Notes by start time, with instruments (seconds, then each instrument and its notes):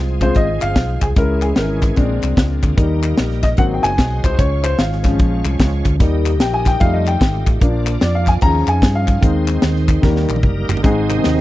Already playing: fingered electric bass C2, tonewheel organ F3 G#3 C4 G#4, french horn section F3 G#3 C4 F4
0.21 upright piano G#3 C4 F4 C5, kick, clap, closed hi-hat
0.35 fingered electric bass G#1, upright piano D#5, kick, closed hi-hat
0.61 fingered electric bass G1, upright piano F5, clap, closed hi-hat
0.76 fingered electric bass B1, kick, snare, closed hi-hat
1.01 fingered electric bass C2, upright piano G#4, kick, clap, closed hi-hat
1.16 fingered electric bass C#2, tonewheel organ E3 G#3 C#4 G#4, french horn section E3 C#4 E4, upright piano G#3 C#4 E4 A#4, kick, closed hi-hat
1.42 upright piano G#4, clap, closed hi-hat
1.56 fingered electric bass G#1, upright piano A#4, snare, closed hi-hat
1.82 kick, snare, clap, closed hi-hat
1.96 fingered electric bass A#1, french horn section F3 A#3 D4, tonewheel organ F3 A#3 C#4 G#4, upright piano G#3 C4 D4, kick, closed hi-hat
2.01 tonewheel organ D4
2.22 fingered electric bass C2, clap, closed hi-hat
2.37 fingered electric bass C#2, kick, snare, closed hi-hat
2.63 fingered electric bass D2, kick, clap, closed hi-hat
2.77 fingered electric bass D#2, french horn section D#3 G3 D#4, tonewheel organ F#3 A#3 D#4 A#4, upright piano G3 A#3 D#4, kick, closed hi-hat
2.82 tonewheel organ G3
3.03 clap, closed hi-hat
3.17 fingered electric bass A#1, snare, closed hi-hat
3.31 snare
3.43 upright piano D#5, kick, snare, clap, closed hi-hat
3.57 fingered electric bass G#1, upright piano F#3 A#3 C4 F#5, french horn section F#3 G#3 C4, tonewheel organ G#3 D#4 F#4 C5, kick, closed hi-hat
3.74 upright piano G5
3.83 fingered electric bass F#1, upright piano G#5, clap, closed hi-hat
3.98 fingered electric bass B1, kick, snare, closed hi-hat
4.24 fingered electric bass C2, upright piano C5, kick, clap, closed hi-hat
4.37 fingered electric bass C#2, french horn section F3 C#4 F4, tonewheel organ G#3 C#4 F4 C#5, upright piano C#5, kick, closed hi-hat
4.64 upright piano C5, clap, closed hi-hat
4.79 fingered electric bass G#1, upright piano F5, snare, closed hi-hat
4.92 snare
5.03 upright piano F3 G#3 C#4, kick, snare, clap, closed hi-hat
5.19 fingered electric bass A#1, kick, closed hi-hat
5.45 fingered electric bass C2, clap, closed hi-hat
5.59 fingered electric bass C#2, kick, snare, closed hi-hat
5.85 fingered electric bass D2, kick, clap, closed hi-hat
6.00 fingered electric bass D#2, upright piano G3 A#3 D#4, french horn section G3 A#3 D#4 G4, tonewheel organ A#3 D#4 G4 C#5, kick, closed hi-hat
6.05 tonewheel organ D#5
6.26 clap, closed hi-hat
6.40 fingered electric bass A#1, upright piano G5, snare, closed hi-hat
6.54 upright piano G#5
6.66 upright piano G5, kick, snare, clap, closed hi-hat
6.80 fingered electric bass F2, upright piano G3 A3 D#4 F5, tonewheel organ G#3 F4 G4 D#5, french horn section A3 F4, kick, closed hi-hat
6.87 tonewheel organ A3
6.93 upright piano D#5
7.06 upright piano G5, clap, closed hi-hat
7.21 fingered electric bass G#1, kick, snare, closed hi-hat
7.47 fingered electric bass A1, kick, clap, closed hi-hat
7.60 fingered electric bass A#1, upright piano F3 A#3 D4, french horn section F3 A#3 D4, tonewheel organ A#3 D4 F4 D5, kick, closed hi-hat
7.87 clap, closed hi-hat
8.01 fingered electric bass F2, upright piano D5, snare, closed hi-hat
8.15 upright piano F5
8.27 upright piano G#5, kick, snare, clap, closed hi-hat
8.41 fingered electric bass D#2, upright piano F3 C#4 G#4 A#5, tonewheel organ G3 D#4 F4 C#5, french horn section C#4 D#4 G#4, kick, closed hi-hat
8.48 tonewheel organ G#4
8.67 fingered electric bass F2, upright piano G#5, clap, closed hi-hat
8.82 fingered electric bass G2, kick, snare, closed hi-hat
8.95 upright piano F5
9.08 kick, clap, closed hi-hat
9.21 fingered electric bass D#2, upright piano D#3 G#3 C4, french horn section D#3 G#3 C4, tonewheel organ G#3 C4 D#4 C5, kick, closed hi-hat
9.48 clap, closed hi-hat
9.62 fingered electric bass D#2, snare, closed hi-hat
9.76 snare
9.88 kick, clap, closed hi-hat
10.02 fingered electric bass D#2, upright piano D#3 G3 A#3, tonewheel organ G3 A#3 D#4 A#4, french horn section G3 A#3, kick, snare
10.16 snare
10.29 fingered electric bass A#1, clap
10.36 high tom
10.43 fingered electric bass F#1, kick, mid tom
10.69 fingered electric bass G1, clap, floor tom
10.77 floor tom
10.82 fingered electric bass G#1, upright piano G#2 G#3 C4 D#4 G#4, tonewheel organ G#3 C4 D#4, french horn section C4 D#4 G#4 C5, kick, closed hi-hat
11.10 tonewheel organ C3 D#3 G#3, clap, closed hi-hat
11.16 upright piano G#3 C4 D#4 G#4
11.24 fingered electric bass D#2, snare, closed hi-hat
11.37 snare